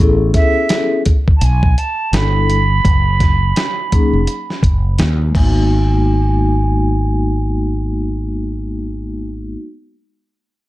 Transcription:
0.00 0.31 A1 loud
0.00 1.00 B3 medium
0.00 1.00 C#4 medium
0.00 1.01 E4 medium
0.00 0.99 G#4 medium
0.00 1.01 A4 medium
0.34 1.02 E5 loud
0.34 kick loud
0.34 snare soft
0.34 closed hi-hat medium
0.69 snare loud
0.69 closed hi-hat medium
1.05 kick medium
1.05 closed hi-hat medium
1.28 kick medium
1.37 1.45 A5 medium
1.41 1.74 B1 medium
1.41 1.80 G#5 medium
1.41 closed hi-hat medium
1.63 kick medium
1.78 2.16 A5 medium
1.78 closed hi-hat medium
2.12 2.80 G1 loud
2.12 2.57 G3 medium
2.12 2.57 B3 medium
2.12 2.57 D4 medium
2.12 2.58 E4 medium
2.12 2.58 A4 medium
2.12 4.99 B5 loud
2.12 snare loud
2.12 closed hi-hat medium
2.50 closed hi-hat medium
2.85 3.52 F#1 loud
2.85 kick loud
2.85 closed hi-hat medium
3.20 kick medium
3.20 snare soft
3.20 closed hi-hat medium
3.56 snare loud
3.56 closed hi-hat medium
3.91 4.18 F#3 medium
3.91 4.19 A#3 medium
3.91 4.19 C#4 medium
3.91 4.19 D#4 medium
3.91 4.20 G#4 medium
3.91 kick medium
3.91 closed hi-hat medium
4.13 4.26 F1 medium
4.27 closed hi-hat medium
4.50 snare soft
4.63 5.00 F#1 medium
4.63 kick medium
4.63 closed hi-hat medium
4.99 5.31 D#2 medium
4.99 snare loud
4.99 closed hi-hat medium
5.28 9.49 G#3 medium
5.28 9.52 A#3 medium
5.35 9.55 G#1 medium
5.35 9.55 B3 medium
5.35 9.59 D#4 medium
5.35 9.32 G#5 medium
5.35 kick medium
5.35 crash medium
5.42 9.62 F#4 medium

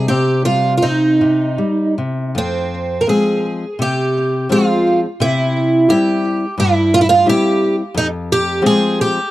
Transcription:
0.00 1.20 C3 medium
0.08 0.44 C4 medium
0.08 0.42 G4 medium
0.45 0.81 G3 soft
0.45 0.73 F4 medium
0.77 0.84 F4 medium
0.82 1.19 C4 soft
0.82 1.94 D#4 medium
1.21 1.58 C3 soft
1.58 1.96 G3 soft
1.98 2.34 C3 soft
2.35 3.05 F2 medium
2.35 3.03 C4 medium
3.01 3.07 A#4 medium
3.07 3.64 F3 soft
3.07 3.64 G#3 soft
3.07 3.65 C4 medium
3.07 3.81 G#4 medium
3.79 4.47 C3 medium
3.79 4.47 G4 medium
4.49 5.05 F3 soft
4.49 5.05 G#3 soft
4.49 5.05 C4 medium
4.49 4.99 F4 medium
5.20 5.86 C3 medium
5.20 5.91 E4 medium
5.89 6.44 G3 medium
5.89 6.44 C4 soft
5.89 6.44 E4 medium
5.89 6.54 G4 medium
6.58 7.24 G2 medium
6.58 6.94 E4 medium
6.94 6.99 F4 medium
7.01 7.06 E4 medium
7.09 7.26 F4 medium
7.26 7.80 G3 soft
7.26 7.81 C4 soft
7.26 7.81 E4 medium
7.26 7.75 G4 medium
7.94 8.61 F2 medium
7.94 8.06 D#4 loud
8.32 8.66 G4 medium
8.62 9.18 F3 soft
8.62 9.18 G#3 soft
8.62 9.18 C4 medium
8.66 9.00 G#4 medium
9.01 9.31 G4 medium

